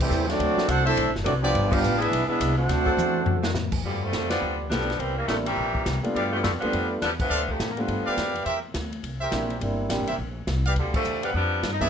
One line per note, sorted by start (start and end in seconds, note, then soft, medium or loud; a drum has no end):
0.00 0.26 E3 medium
0.00 0.25 G3 loud
0.00 0.26 A3 medium
0.00 0.26 C4 medium
0.00 0.26 E4 medium
0.00 0.26 G4 medium
0.00 0.26 C5 loud
0.00 crash loud
0.09 0.38 D#2 medium
0.09 0.38 G3 loud
0.09 0.38 C4 medium
0.09 0.38 E4 medium
0.09 0.38 A4 loud
0.09 hi-hat pedal medium
0.28 0.67 F#3 loud
0.28 0.65 A3 medium
0.28 0.68 C4 medium
0.28 0.68 D4 loud
0.28 0.68 F#4 loud
0.28 0.68 A4 loud
0.28 0.68 D5 loud
0.28 snare soft
0.28 ride medium
0.39 0.55 D2 medium
0.39 kick soft
0.39 ride medium
0.56 muted upright bass stroke soft
0.56 snare medium
0.66 0.95 C2 loud
0.66 0.79 F#3 medium
0.66 0.82 A3 medium
0.66 0.82 C4 medium
0.66 0.79 C4 medium
0.66 0.79 D4 medium
0.66 0.85 D4 loud
0.66 0.84 F#4 medium
0.66 0.79 A4 loud
0.66 0.85 A4 loud
0.66 0.84 C5 loud
0.66 0.86 F#5 loud
0.66 kick soft
0.66 hi-hat pedal medium
0.66 ride medium
0.83 1.10 A3 medium
0.83 1.11 C4 loud
0.83 1.12 D4 loud
0.83 1.11 E4 medium
0.83 1.12 A4 loud
0.83 1.12 C5 loud
0.83 1.12 E5 loud
0.83 ride medium
0.97 1.06 B1 medium
0.97 kick soft
0.97 ride medium
1.06 1.15 A1 medium
1.16 1.24 F#1 medium
1.16 snare medium
1.23 1.53 C2 loud
1.23 1.32 F#3 medium
1.23 1.53 F#3 medium
1.23 1.32 A3 medium
1.23 1.53 C4 medium
1.23 1.32 C4 medium
1.23 1.52 D4 medium
1.23 1.32 D4 medium
1.23 1.32 F#4 medium
1.23 1.33 A4 medium
1.23 1.53 B4 loud
1.23 1.32 D5 medium
1.23 kick soft
1.23 hi-hat pedal medium
1.23 ride medium
1.41 1.68 F3 medium
1.41 1.68 B3 loud
1.41 1.69 B3 medium
1.41 1.68 D4 loud
1.41 1.70 F4 medium
1.41 1.69 G4 medium
1.41 1.69 D5 loud
1.41 ride medium
1.54 1.82 G1 loud
1.54 kick soft
1.54 ride medium
1.70 1.78 F3 loud
1.70 1.99 B3 medium
1.70 1.78 B3 loud
1.70 1.99 D4 medium
1.70 1.78 D4 loud
1.70 1.99 D4 loud
1.70 1.99 F4 medium
1.70 1.78 G4 loud
1.70 2.00 G4 loud
1.70 1.99 B4 loud
1.70 2.00 F5 loud
1.70 kick loud
1.70 crash loud
1.82 2.10 A1 loud
1.82 hi-hat pedal medium
1.97 2.06 E3 loud
1.97 2.26 G#3 medium
1.97 2.06 B3 medium
1.97 2.25 B3 medium
1.97 2.06 D4 medium
1.97 2.27 D4 loud
1.97 2.26 E4 medium
1.97 2.06 G#4 loud
1.97 2.27 G#4 loud
1.97 2.27 B4 loud
1.97 2.27 E5 loud
2.02 ride medium
2.11 2.28 B1 medium
2.11 kick soft
2.11 ride medium
2.27 2.54 G#3 loud
2.27 2.54 B3 loud
2.27 2.55 D4 medium
2.27 2.54 E4 medium
2.27 2.55 G#4 medium
2.27 2.55 B4 medium
2.27 2.55 E5 loud
2.27 muted upright bass stroke soft
2.40 2.68 C2 loud
2.40 kick soft
2.40 hi-hat pedal medium
2.40 ride medium
2.57 3.51 A3 loud
2.57 3.51 C4 loud
2.57 3.51 D4 loud
2.57 3.51 F#4 loud
2.57 3.52 A4 loud
2.57 3.51 C5 loud
2.57 3.51 F#5 loud
2.68 2.96 D2 medium
2.68 kick soft
2.68 snare soft
2.68 ride medium
2.85 2.93 F#3 loud
2.85 2.93 C4 medium
2.85 2.93 D4 medium
2.85 2.93 A4 loud
2.85 kick medium
2.97 3.25 E2 loud
2.97 hi-hat pedal medium
2.97 high tom medium
3.26 3.54 F#2 medium
3.26 floor tom loud
3.43 3.51 F#3 loud
3.43 3.51 C4 medium
3.43 3.51 D4 medium
3.43 3.51 F#4 loud
3.43 snare medium
3.54 3.83 A2 loud
3.54 snare medium
3.54 hi-hat pedal medium
3.72 kick medium
3.72 crash medium
3.83 4.12 G2 medium
3.83 4.01 B2 medium
3.83 4.01 D3 medium
3.83 4.01 F3 medium
3.83 4.01 G3 medium
3.83 kick soft
4.04 4.30 D3 medium
4.04 4.30 F3 medium
4.04 4.30 G3 medium
4.04 4.32 A3 loud
4.12 4.40 F2 medium
4.12 kick soft
4.12 snare medium
4.12 hi-hat pedal medium
4.12 ride medium
4.29 4.57 D3 medium
4.29 4.57 F3 medium
4.29 4.58 G3 medium
4.29 4.57 B3 loud
4.29 4.68 F4 medium
4.29 4.68 G4 medium
4.29 4.68 B4 medium
4.29 4.68 D5 medium
4.29 snare medium
4.29 ride medium
4.42 4.70 D2 medium
4.70 4.98 B1 medium
4.70 4.97 F3 medium
4.70 4.97 G3 medium
4.70 4.87 A3 medium
4.70 4.97 B3 medium
4.70 4.87 B3 soft
4.70 4.97 D4 loud
4.70 4.87 D4 soft
4.70 4.87 F4 soft
4.70 4.88 G4 medium
4.70 kick soft
4.70 snare medium
4.70 hi-hat pedal medium
4.70 ride medium
4.81 snare soft
4.90 snare soft
4.90 ride soft
4.99 5.27 C2 medium
4.99 5.17 E3 medium
4.99 5.15 G3 medium
4.99 5.16 A#3 medium
4.99 5.17 C4 loud
4.99 kick soft
4.99 ride medium
5.16 5.28 C3 medium
5.16 5.28 E3 medium
5.16 5.27 G3 medium
5.16 5.28 A#3 medium
5.28 5.56 A1 medium
5.28 5.36 A#2 medium
5.28 5.37 D3 medium
5.28 5.36 F3 medium
5.28 5.44 G3 medium
5.28 5.36 A3 medium
5.28 5.45 A#3 medium
5.28 5.45 C4 medium
5.28 5.45 D4 medium
5.28 5.46 E4 medium
5.28 kick soft
5.28 snare medium
5.28 hi-hat pedal medium
5.28 ride medium
5.45 5.99 A#2 medium
5.45 5.99 C3 medium
5.45 6.00 E3 medium
5.45 5.99 G3 medium
5.45 5.84 G4 medium
5.45 5.84 A#4 medium
5.45 5.84 C5 medium
5.45 5.84 E5 medium
5.45 ride medium
5.57 5.85 A#1 medium
5.57 kick soft
5.75 kick medium
5.86 6.02 C2 medium
5.86 kick soft
5.86 snare medium
5.86 hi-hat pedal medium
5.86 ride medium
6.03 6.41 G3 medium
6.03 6.42 A3 medium
6.03 6.42 B3 medium
6.03 6.42 D4 medium
6.03 6.42 F4 medium
6.03 muted upright bass stroke soft
6.03 ride soft
6.14 6.43 G2 medium
6.14 6.31 B2 medium
6.14 6.31 D3 medium
6.14 6.32 F3 medium
6.14 6.31 G3 medium
6.14 6.95 G4 medium
6.14 6.95 B4 medium
6.14 6.94 D5 medium
6.14 6.95 F5 medium
6.14 kick soft
6.14 ride medium
6.33 6.39 B2 medium
6.33 6.39 D3 medium
6.33 6.39 F3 medium
6.33 6.38 A3 medium
6.43 6.53 F#2 medium
6.43 6.51 B2 medium
6.43 6.51 D3 medium
6.43 6.51 F3 medium
6.43 6.51 A3 medium
6.43 kick soft
6.43 snare medium
6.43 hi-hat pedal medium
6.43 ride medium
6.53 6.62 F2 medium
6.59 6.72 D2 medium
6.59 6.87 D3 medium
6.59 6.87 F3 medium
6.59 6.88 G3 medium
6.59 6.99 G3 medium
6.59 7.00 A3 medium
6.59 6.87 B3 medium
6.59 7.00 B3 medium
6.59 7.00 D4 medium
6.59 ride soft
6.64 7.00 F4 medium
6.73 7.01 F2 medium
6.73 kick soft
6.73 ride medium
7.02 7.29 E2 medium
7.02 7.11 F3 medium
7.02 7.11 G3 medium
7.02 7.11 B3 medium
7.02 7.10 D4 loud
7.02 kick soft
7.02 snare medium
7.02 hi-hat pedal medium
7.02 ride medium
7.20 7.47 D3 medium
7.20 7.47 F3 medium
7.20 7.47 A3 medium
7.20 7.47 B3 medium
7.20 kick medium
7.20 crash medium
7.30 7.58 D2 medium
7.30 7.42 A4 medium
7.30 7.42 C5 medium
7.30 7.42 D5 medium
7.30 7.42 F5 loud
7.49 7.69 C3 medium
7.49 7.69 D3 medium
7.49 7.69 F3 medium
7.49 7.69 A3 medium
7.49 kick medium
7.59 7.87 A2 medium
7.59 kick soft
7.59 snare medium
7.59 hi-hat pedal medium
7.59 ride medium
7.71 7.78 A#3 medium
7.77 8.36 D3 medium
7.77 8.36 F3 medium
7.77 8.15 G3 medium
7.77 8.36 G3 medium
7.77 8.15 A3 medium
7.77 8.15 B3 medium
7.77 8.36 B3 medium
7.77 8.15 D4 soft
7.77 8.16 F4 medium
7.77 ride soft
7.88 8.00 G2 medium
7.88 kick soft
7.88 ride medium
7.98 8.07 F2 medium
8.05 8.17 D2 medium
8.05 8.43 G4 medium
8.05 8.44 B4 medium
8.05 8.43 D5 medium
8.05 8.43 F5 loud
8.17 8.45 F2 medium
8.17 kick soft
8.17 snare medium
8.17 hi-hat pedal medium
8.17 ride medium
8.35 ride soft
8.45 8.74 E2 medium
8.45 8.58 G4 medium
8.45 8.58 A#4 medium
8.45 8.58 C5 medium
8.45 8.58 E5 loud
8.45 kick soft
8.45 ride medium
8.74 9.03 D2 medium
8.74 kick soft
8.74 snare medium
8.74 hi-hat pedal medium
8.74 ride medium
8.93 ride soft
9.03 9.31 C2 medium
9.03 kick soft
9.03 ride medium
9.20 9.59 G4 medium
9.20 9.58 A#4 medium
9.20 9.58 C5 medium
9.20 9.59 E5 medium
9.32 9.60 A#1 medium
9.32 9.48 G3 medium
9.32 9.48 A#3 soft
9.32 9.48 C4 soft
9.32 9.49 D4 medium
9.32 9.49 E4 medium
9.32 kick soft
9.32 snare medium
9.32 hi-hat pedal medium
9.32 ride medium
9.50 ride soft
9.61 9.89 G1 medium
9.61 9.89 G3 medium
9.61 9.88 A#3 soft
9.61 9.89 C4 soft
9.61 9.89 D4 soft
9.61 9.90 E4 medium
9.61 kick soft
9.61 ride medium
9.90 10.00 A1 medium
9.90 10.06 G3 medium
9.90 10.06 A#3 medium
9.90 10.06 C4 medium
9.90 10.06 D4 medium
9.90 10.07 G4 medium
9.90 kick soft
9.90 snare medium
9.90 hi-hat pedal medium
9.90 ride medium
9.99 10.09 G1 medium
10.07 10.18 E1 medium
10.07 10.16 G4 medium
10.07 10.15 A#4 medium
10.07 10.15 C5 medium
10.07 10.15 E5 medium
10.07 ride medium
10.18 10.47 A#1 medium
10.18 kick soft
10.47 10.75 C2 medium
10.47 kick soft
10.47 snare medium
10.47 hi-hat pedal medium
10.47 ride medium
10.65 10.73 G4 medium
10.65 10.73 B4 medium
10.65 10.73 D5 medium
10.65 10.73 F5 medium
10.65 ride soft
10.76 11.04 D2 medium
10.76 10.94 B2 medium
10.76 10.94 D3 medium
10.76 10.95 F3 medium
10.76 10.94 G3 medium
10.76 kick soft
10.76 ride medium
10.94 11.22 D3 medium
10.94 11.22 F3 medium
10.94 11.22 G3 medium
10.94 11.22 A3 medium
10.94 kick medium
10.94 crash medium
11.04 11.33 E2 medium
11.04 hi-hat pedal medium
11.23 11.35 D3 medium
11.23 11.35 F3 medium
11.23 11.34 G3 medium
11.23 11.34 B3 medium
11.23 11.30 G4 medium
11.23 11.31 B4 medium
11.23 11.31 D5 medium
11.23 11.31 F5 medium
11.23 ride medium
11.34 11.62 F2 medium
11.34 11.70 F3 medium
11.34 11.70 G3 loud
11.34 11.70 B3 medium
11.34 11.70 D4 loud
11.34 kick soft
11.63 11.90 G2 medium
11.63 kick soft
11.63 snare medium
11.63 hi-hat pedal medium
11.63 ride medium
11.72 11.81 D#4 medium
11.81 11.90 E3 medium
11.81 11.90 G#3 medium
11.81 11.90 B3 medium
11.81 11.90 D4 medium
11.81 11.90 E4 medium
11.81 11.88 G#4 medium
11.81 11.88 B4 medium
11.81 11.89 D5 medium
11.81 11.89 E5 loud
11.81 kick medium
11.81 ride soft